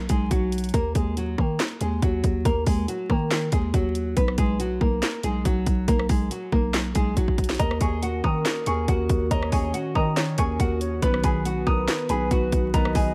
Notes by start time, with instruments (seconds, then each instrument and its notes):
0.09 808-style bass B1, nylon-string guitar G#3 G#4, kick, closed hi-hat
0.31 808-style bass B1, nylon-string guitar F#3 F#4, kick, closed hi-hat
0.52 closed hi-hat
0.58 closed hi-hat
0.64 closed hi-hat
0.69 closed hi-hat
0.74 808-style bass D#2, nylon-string guitar A#3 A#4, kick, closed hi-hat
0.95 808-style bass D#2, nylon-string guitar G#3 G#4, kick, closed hi-hat
1.17 nylon-string guitar F#3 F#4, closed hi-hat
1.38 808-style bass D#3, nylon-string guitar A#3 A#4, kick
1.60 snare, clap, closed hi-hat
1.81 808-style bass D#2, nylon-string guitar G#3 G#4, closed hi-hat
2.02 808-style bass D#2, nylon-string guitar F#3 F#4, kick, closed hi-hat
2.24 808-style bass D#2, kick, closed hi-hat
2.45 808-style bass D#2, nylon-string guitar A#3 A#4, kick, closed hi-hat
2.66 808-style bass D#2, nylon-string guitar G#3 G#4, kick, open hi-hat
2.88 nylon-string guitar F#3 F#4, closed hi-hat
3.10 808-style bass D#3, nylon-string guitar A#3 A#4, kick
3.31 snare, clap, closed hi-hat
3.52 808-style bass D#2, nylon-string guitar G#3 G#4, kick, closed hi-hat
3.74 808-style bass D#2, nylon-string guitar F#3 F#4, kick, closed hi-hat
3.95 closed hi-hat
4.17 808-style bass B1, nylon-string guitar B3 B4, kick, closed hi-hat
4.28 cross-stick
4.38 808-style bass B1, nylon-string guitar G#3 G#4, kick, closed hi-hat
4.60 nylon-string guitar F#3 F#4, closed hi-hat
4.81 808-style bass B1, nylon-string guitar A#3 A#4, kick
5.02 snare, clap, closed hi-hat
5.23 808-style bass B1, nylon-string guitar G#3 G#4, closed hi-hat
5.45 808-style bass B1, nylon-string guitar F#3 F#4, kick, closed hi-hat
5.66 808-style bass B1, kick, closed hi-hat
5.88 808-style bass B1, nylon-string guitar A#3 A#4, kick, closed hi-hat
5.99 cross-stick
6.09 808-style bass B1, nylon-string guitar G#3 G#4, kick, open hi-hat
6.31 nylon-string guitar F#3 F#4, closed hi-hat
6.52 808-style bass B1, nylon-string guitar A#3 A#4, kick
6.74 cross-stick, snare, clap, closed hi-hat
6.95 808-style bass B1, nylon-string guitar G#3 G#4, kick, closed hi-hat
7.16 808-style bass B1, nylon-string guitar F#3 F#4, kick, closed hi-hat
7.28 kick
7.38 kick, closed hi-hat
7.44 closed hi-hat
7.50 snare, closed hi-hat
7.55 closed hi-hat
7.59 808-style bass D#2, ambient pad D#3 C#4 F#4, nylon-string guitar A#4 A#5, felt piano D#5, kick, closed hi-hat
7.71 cross-stick
7.81 808-style bass D#2, nylon-string guitar G#4 G#5, soft synth lead A#4, felt piano C#6, kick, closed hi-hat
8.03 nylon-string guitar F#4 F#5, closed hi-hat
8.24 808-style bass D#3, nylon-string guitar A#4 A#5, felt piano D#6, kick
8.45 snare, clap, closed hi-hat
8.66 808-style bass D#2, nylon-string guitar G#4 G#5, felt piano C#6, closed hi-hat
8.88 808-style bass D#2, nylon-string guitar F#4 F#5, kick, closed hi-hat
9.09 808-style bass D#2, kick, closed hi-hat
9.31 808-style bass D#2, nylon-string guitar A#4 A#5, soft synth lead C#5, felt piano D#5, kick, closed hi-hat
9.43 cross-stick
9.52 808-style bass D#2, nylon-string guitar G#4 G#5, felt piano C#6, kick, open hi-hat
9.74 nylon-string guitar F#4 F#5, closed hi-hat
9.95 808-style bass D#3, nylon-string guitar A#4 A#5, soft synth lead D#5, felt piano D#6, kick
10.17 soft synth lead C#5, snare, clap, closed hi-hat
10.38 808-style bass D#2, nylon-string guitar G#4 G#5, soft synth lead A#4, felt piano C#6, kick, closed hi-hat
10.60 808-style bass D#2, nylon-string guitar F#4 F#5, kick, closed hi-hat
10.81 soft synth lead C#5, closed hi-hat
11.02 808-style bass B1, ambient pad B3, felt piano B3, nylon-string guitar B4 B5, kick, closed hi-hat
11.14 cross-stick
11.24 808-style bass B1, nylon-string guitar G#4 G#5, soft synth lead B4, felt piano B5, kick, closed hi-hat
11.45 nylon-string guitar F#4 F#5, closed hi-hat
11.67 808-style bass B1, nylon-string guitar A#4 A#5, felt piano D#6, kick
11.88 snare, clap, closed hi-hat
12.09 808-style bass B1, nylon-string guitar G#4 G#5, felt piano B5, closed hi-hat
12.31 808-style bass B1, nylon-string guitar F#4 F#5, kick, closed hi-hat
12.52 808-style bass B1, kick, closed hi-hat
12.74 808-style bass B1, felt piano B3, nylon-string guitar A#4 A#5, soft synth lead D#5, kick, closed hi-hat
12.85 cross-stick
12.95 808-style bass B1, nylon-string guitar G#4 G#5, kick, open hi-hat